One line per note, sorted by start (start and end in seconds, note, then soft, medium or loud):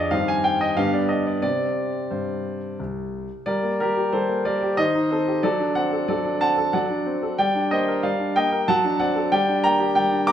0.00 0.13 F2 medium
0.00 0.13 F3 soft
0.00 0.14 D4 soft
0.00 0.14 G#4 soft
0.00 0.14 D5 medium
0.00 0.12 D#5 medium
0.00 0.11 F5 medium
0.11 0.75 G2 medium
0.11 0.73 D#3 soft
0.11 0.73 C4 soft
0.11 0.73 G4 soft
0.11 0.28 F5 medium
0.28 0.44 G#5 medium
0.44 0.60 G5 medium
0.61 0.77 D#5 medium
0.77 1.42 G2 medium
0.77 1.39 D3 soft
0.77 1.40 B3 soft
0.77 1.40 G4 medium
0.77 0.93 F5 medium
0.94 1.10 D5 medium
1.09 1.26 D#5 medium
1.27 1.41 D5 medium
1.42 1.90 C3 medium
1.42 1.98 C4 soft
1.42 1.97 G4 soft
1.42 2.11 D5 medium
2.11 2.59 G2 soft
2.11 2.79 C5 medium
2.79 3.27 C2 soft
3.46 3.80 G3 medium
3.46 3.78 A#4 medium
3.46 3.79 D5 medium
3.63 3.90 A#3 soft
3.80 4.07 G3 soft
3.80 3.96 G4 medium
3.80 4.13 A#4 medium
3.97 4.23 G4 soft
4.12 4.44 G3 medium
4.12 4.44 A4 medium
4.12 4.45 C5 medium
4.29 4.55 A#3 soft
4.45 4.72 G3 medium
4.45 4.76 A#4 medium
4.45 4.78 D5 medium
4.62 4.78 G4 soft
4.77 5.41 D#3 medium
4.77 5.09 C5 medium
4.77 5.10 D#5 medium
4.95 5.21 D#4 soft
5.11 5.37 C4 soft
5.11 5.42 A4 medium
5.11 5.43 C5 medium
5.27 5.43 G4 soft
5.43 6.07 F#3 medium
5.43 5.74 A4 medium
5.43 5.75 D5 medium
5.60 5.86 D4 soft
5.75 6.02 C4 medium
5.75 6.07 D5 medium
5.75 6.08 F#5 medium
5.93 6.08 A4 soft
6.08 6.72 F#3 medium
6.08 6.39 A4 medium
6.08 6.41 D5 medium
6.25 6.51 D4 soft
6.41 6.67 C4 soft
6.41 6.72 F#5 medium
6.41 6.73 A5 medium
6.57 6.83 A4 soft
6.73 7.37 F#3 medium
6.73 7.35 D5 medium
6.73 7.38 F#5 medium
6.90 7.16 D4 soft
7.06 7.32 C4 medium
7.23 7.39 A4 soft
7.38 8.02 G3 medium
7.38 7.69 D5 medium
7.38 7.71 G5 medium
7.55 7.81 D4 soft
7.71 7.97 A#3 soft
7.71 8.02 C5 medium
7.71 8.03 D#5 medium
7.88 8.14 A#4 medium
8.03 8.66 G3 medium
8.03 8.34 D5 medium
8.03 8.36 F5 medium
8.19 8.45 D4 medium
8.36 8.62 A#3 medium
8.36 8.66 D#5 medium
8.36 8.68 G5 medium
8.52 8.68 A#4 medium
8.68 9.30 F#3 medium
8.68 8.98 F#5 medium
8.68 9.00 A5 medium
8.84 9.10 D4 medium
8.99 9.25 C4 medium
8.99 9.30 D5 medium
8.99 9.31 F#5 medium
9.16 9.32 A4 medium
9.32 9.94 G3 medium
9.32 9.62 D5 medium
9.32 9.63 G5 medium
9.48 9.73 D4 medium
9.64 9.89 A#3 medium
9.64 9.94 G5 medium
9.64 9.95 A#5 medium
9.80 10.05 G4 medium
9.95 10.32 G3 medium
9.95 10.26 D5 medium
9.95 10.27 G5 medium
10.12 10.32 D4 medium
10.27 10.32 A#3 medium
10.27 10.32 A#5 medium
10.27 10.32 D6 loud